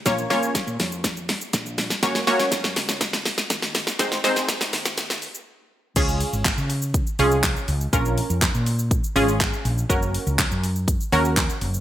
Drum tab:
CC |----------------|----------------|----------------|x---------------|
HH |x-o-x-o-x-o-x-o-|x-o-x-o-x-o-x-o-|x-o-x-o-x-o-----|x-o-x-o-x-o-x-o-|
SH |xxxxxxxxxxxxxxxx|xxxxxxxxxxxxxxxx|xxxxxxxxxxxx----|xxxxxxxxxxxxxxxx|
CP |----------------|----------------|----------------|----x-------x---|
SD |o-o-o-o-o-o-o-oo|oooooooooooooooo|oooooooooo------|----o-------o---|
BD |o---o---o---o---|o---o---o---o---|o---o-----------|o---o---o---o---|

CC |----------------|----------------|
HH |x-o-x-o-x-o-x-o-|x-o-x-o-x-o-x-o-|
SH |xxxxxxxxxxxxxxxx|xxxxxxxxxxxxxxxx|
CP |----x-------x---|----x-------x---|
SD |----o-------o---|----o-------o---|
BD |o---o---o---o---|o---o---o---o---|